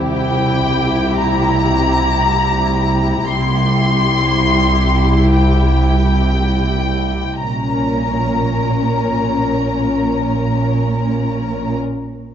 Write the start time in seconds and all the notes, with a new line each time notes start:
Already playing: C2 C4 E4 G4 C5
0.15 G5
1.19 A#5
3.26 C2 E4 G4 C6
5.33 G5
7.40 A#1 A#2 C#4 A#4 A#5